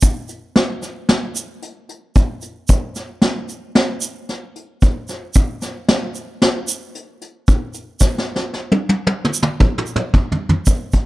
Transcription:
0.02 kick, closed hi-hat, shaker
0.28 closed hi-hat, shaker
0.56 snare, closed hi-hat
0.82 snare, closed hi-hat, shaker
1.09 snare, closed hi-hat
1.35 closed hi-hat, shaker
1.62 closed hi-hat
1.89 closed hi-hat
2.15 kick, closed hi-hat, shaker
2.42 closed hi-hat, shaker
2.68 kick, closed hi-hat, shaker
2.96 snare, closed hi-hat, shaker
3.22 snare, closed hi-hat
3.48 closed hi-hat, shaker
3.75 snare, closed hi-hat
4.01 closed hi-hat, shaker
4.29 snare, closed hi-hat
4.56 closed hi-hat
4.82 kick, closed hi-hat, shaker
5.08 snare, closed hi-hat, shaker
5.34 kick, closed hi-hat, shaker
5.62 snare, closed hi-hat, shaker
5.88 snare, closed hi-hat
6.15 closed hi-hat, shaker
6.42 snare, closed hi-hat
6.68 closed hi-hat, shaker
6.95 closed hi-hat
7.21 closed hi-hat
7.48 kick, closed hi-hat, shaker
7.74 closed hi-hat, shaker
8.00 kick, snare, shaker
8.18 snare
8.36 snare
8.54 snare
8.72 high tom
8.89 high tom
9.07 high tom
9.25 mid tom
9.34 shaker
9.42 mid tom
9.60 kick, mid tom
9.78 mid tom
9.86 shaker
9.96 mid tom
10.14 kick, floor tom
10.32 floor tom
10.49 floor tom
10.66 kick, closed hi-hat, shaker
10.92 kick, closed hi-hat, shaker

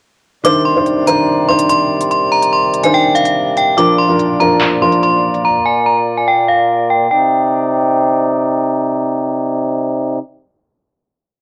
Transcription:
0.44 C3 D#3 G3 D4 C5 D5 D6, closed hi-hat
0.65 C6
0.75 D#3 D4 C5
0.86 closed hi-hat
1.06 D#3 D4 C5 A#5, closed hi-hat
1.48 D#3 D4 C5 C6
1.59 closed hi-hat
1.70 C6, closed hi-hat
2.01 closed hi-hat
2.11 C6, closed hi-hat
2.32 A#5
2.43 closed hi-hat
2.53 C6
2.74 closed hi-hat
2.83 D#3 D4 C5 G#5, closed hi-hat
2.94 G5
3.15 F5, closed hi-hat
3.25 closed hi-hat
3.57 G5, closed hi-hat
3.77 A#2 F3 A#3 D4 F4 A#4 D6, closed hi-hat
3.98 C6
4.08 F3 D4 A#4
4.19 closed hi-hat
4.40 F3 D4 A#4 A#5, closed hi-hat
4.61 clap
4.81 F3 D4 A#4 C6
4.92 closed hi-hat
5.03 C6, closed hi-hat
5.34 closed hi-hat
5.45 A#5
5.66 G#5
5.86 A#5
6.18 G#5
6.28 G5
6.48 F5
6.90 G5
7.11 C3 C4 D#4 D5 G5

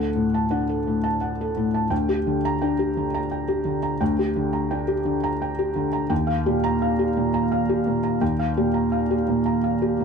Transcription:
Already playing: D2 A4 F#5
0.16 A2
0.34 A5
0.51 D4 F#5
0.69 A4
0.87 A2
1.04 A5
1.21 F#5
1.41 A4
1.57 A2
1.74 A5
1.90 D2 G5
2.09 G4
2.27 D3
2.45 A#5
2.62 D4 G5
2.79 G4
2.97 D3
3.14 A#5
3.31 G5
3.48 G4
3.65 D3
3.83 A#5
4.01 D2 G5
4.19 G4
4.36 D3
4.53 A#5
4.71 D4 G5
4.88 G4
5.05 D3
5.24 A#5
5.42 G5
5.59 G4
5.76 D3
5.93 A#5
6.10 D#2 G5
6.27 F5
6.46 A#2 G4
6.64 A#5
6.82 F5
6.99 G4
7.17 A#2
7.34 A#5
7.52 F5
7.69 G4
7.87 A#2
8.04 A#5
8.21 D#2 G5
8.39 F5
8.57 A#2 G4
8.74 A#5
8.92 F5
9.11 G4
9.28 A#2
9.46 A#5
9.64 F5
9.82 G4
10.00 A#2

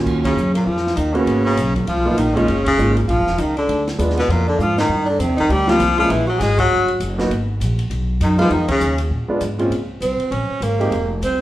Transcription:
Already playing: D#2 F#3 A#3 C#4 F4
0.06 D#2, kick, crash
0.24 C#3 C#4, kick, ride
0.36 F#2, hi-hat pedal
0.54 A#2 A#3, ride
0.66 F2 F3 F4
0.77 snare
0.87 snare
0.96 D#2 D#3 D#4, hi-hat pedal, ride
1.14 C#3 A#3 B3 C#4 F#4, ride
1.26 G#1, ride
1.45 C#3 C#4
1.56 B1, hi-hat pedal, ride
1.75 A#2 A#3, kick, ride
1.87 C#2 F3 F4, ride
1.97 B1
2.05 G#1 A#3 B3 D#4 F4
2.16 A#1 D#3 D#4, hi-hat pedal, ride
2.35 C#3 G#3 A#3 C#4 D#4 F4, kick, ride
2.47 F#1, ride
2.64 C#3 C#4, kick, ride
2.78 G#1 G#3 A#3 D#4 F4, hi-hat pedal
2.95 A#2 A#3, ride
3.08 A#1 F3 F4, ride
3.18 F#1
3.27 F1, snare
3.38 C#2 D#3 D#4, hi-hat pedal, ride
3.57 D3 D4, ride
3.68 D2, ride
3.88 snare, ride
3.98 D#2 G#3 B3 D4 F4, hi-hat pedal, ride
4.10 snare
4.17 B2 B3, snare, ride
4.28 F2 A#2 A#3, ride
4.47 D3 D4
4.59 G#2 F3 F4, hi-hat pedal
4.78 D#3 D#4, snare, ride
4.89 G2
5.06 D4
5.10 D3
5.19 F2 C3 C4, hi-hat pedal, ride
5.29 D#2
5.37 C2 D#3 D#4, ride
5.49 D2 G3 G4, ride
5.68 F3 G3 A#3 C4 F4, snare
5.79 C2, hi-hat pedal, ride
5.97 F3 G#3 A#3 C#4 E4 F4, ride
6.09 A#1 E3 E4, ride
6.27 F#3 F#4
6.39 G#1 G#3 G#4, snare, hi-hat pedal, ride
6.58 F#3 F#4, kick, ride
6.70 G1
6.88 ride
7.00 F#1, hi-hat pedal, ride
7.18 A#3 B3 D#4 F#4, snare, ride
7.30 G#1, ride
7.60 A#1, hi-hat pedal, ride
7.79 ride
7.90 B1, ride
8.20 F#2 D#3 D#4, hi-hat pedal, ride
8.38 F3 G#3 B3 D#4 F4, ride
8.50 F2 D#3 D#4, ride
8.68 C#3 C#4, kick, ride
8.80 D#2, hi-hat pedal
8.98 ride
9.10 A#2
9.28 G#3 B3 D4 F4, muted upright bass stroke
9.41 G#2, hi-hat pedal, ride
9.59 A#2 G#3 C4 C#4 F4, ride
9.70 C#2, ride
10.01 C2 C4, hi-hat pedal, ride
10.20 muted upright bass stroke, ride
10.31 A#1 C#4, ride
10.49 muted upright bass stroke
10.60 G#1 A#3, hi-hat pedal, ride
10.79 G#3 C4 D#4 G4, ride
10.91 F1, ride
11.21 C2 C4, hi-hat pedal, ride

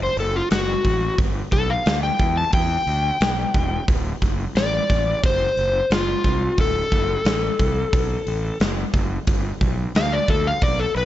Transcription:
0.03 C5
0.17 F#1 A4, open hi-hat
0.36 F4
0.51 F#1 F#4, snare, open hi-hat
0.85 A1, kick, open hi-hat
1.18 G1, kick, open hi-hat
1.52 B1 A4, kick, open hi-hat
1.70 F5
1.86 D2, snare, open hi-hat
2.03 G5
2.19 E2, kick, open hi-hat
2.37 A5
2.53 E2 G5, kick, open hi-hat
2.87 D2, open hi-hat
3.20 B1, snare, open hi-hat
3.54 E1, kick, open hi-hat
3.88 D1, kick, open hi-hat
4.21 F#1, kick, open hi-hat
4.55 A1 D5, snare, open hi-hat
4.90 A1, kick, open hi-hat
5.24 F#1 C5, kick, open hi-hat
5.57 F#1, open hi-hat
5.90 F#1 F4, snare, open hi-hat
6.24 C2, kick, open hi-hat
6.58 D1 A4, kick, open hi-hat
6.92 F#1, kick, open hi-hat
7.25 A1, snare, open hi-hat
7.59 C2, kick, open hi-hat
7.93 B1, kick, open hi-hat
8.27 A1, open hi-hat
8.60 F#1, snare, open hi-hat
8.93 F#1, kick, open hi-hat
9.27 G1, kick, open hi-hat
9.61 B1, kick, open hi-hat
9.95 D2 F5, snare, open hi-hat
10.13 D5
10.28 D2 A4, kick, open hi-hat
10.47 F5
10.62 B1 D5, kick, open hi-hat
10.79 A4
10.95 B1 B4, open hi-hat

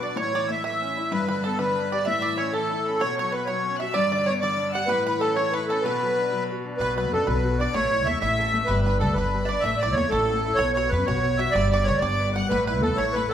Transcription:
Already playing: B2
0.00 D4 D5 D6
0.16 A2 C#5 C#6
0.34 E3 D5
0.47 A3 E5 E6
0.63 E3 E5 E6
0.82 C#4
0.97 E4
1.11 G2 B4 B5
1.29 D3 B4
1.43 B3 A4 A5
1.59 D3 B4 B5
1.78 D4
1.92 G4 D5
1.99 F#6
2.05 A2 E5 E6
2.22 E3 D5
2.37 C#4 C#5 C#6
2.52 E3 A4 A5
2.70 E4
2.86 C#4 B5
3.00 B2 C#5 C#6
3.17 F#3 C#5 C#6
3.32 B3 B4 B5
3.45 F#3 C#5 C#6
3.66 C#4
3.76 E5 E6 F#6
3.82 F#4
3.94 G2 D5 D6
4.12 D3 D5
4.26 B3 C#5
4.41 D3 D5 D6
4.59 D4
4.69 F#5 E6 F#6
4.75 G4 F#5
4.86 A2 B4 B5
5.05 E3 B4 B5
5.20 C#4 A4 A5
5.35 E3 C#5 C#6
5.52 E4 B4 B5
5.67 C#4 A4 A5
5.82 B2 B4
5.86 B4 B5
6.03 F#3
6.17 D4
6.31 F#3
6.51 F#4
6.65 D4
6.77 B1 B2 B4 B5
6.96 F#3 B4 B5
7.12 F#2 D4 A4 A5
7.26 B1 F#3 B4 B5
7.44 F#4
7.59 D4 D5 D6
7.74 A1 A3 C#5 C#6
7.91 E4
8.05 E2 A4 E5
8.20 A1 E4 E5 E6
8.38 A4
8.54 A3
8.65 B4
8.69 G1 G3 B5
8.82 B4
8.86 D4 B4 B5
8.99 D2 G3 A4 A5
9.13 G1 D4 B4
9.17 B4 B5
9.34 G3
9.45 D5 E5
9.50 D4 D6
9.60 A1 E5
9.64 A3 E5 E6
9.77 D5
9.81 E4 D5 D6
9.92 E2 C#5 C#6
9.97 A3 C#5
10.09 A1 A4 A5
10.13 E4
10.31 A3
10.45 E4
10.55 B1 C#5 C#6
10.60 B3
10.73 F#4 C#5 C#6
10.77 C#5
10.89 F#2 B3 B4 B5
10.94 B4
11.06 B1 F#4 C#5 C#6
11.23 B3
11.37 F#4 E5 E6
11.51 G1 G3 D5 D6
11.56 D5
11.70 D4 D5 D6
11.84 D2 B4 C#5 C#6
11.88 C#5
11.98 D4 D5 D6
12.02 G1 D5
12.19 B4
12.33 G3 F#5 F#6
12.49 A1 A3 B4 B5
12.65 E4 B4 B5
12.82 E2 A3 A4 A5
12.96 A1 E4 C#5 C#6
13.13 A3 B4 B5
13.29 E4 A4 A5

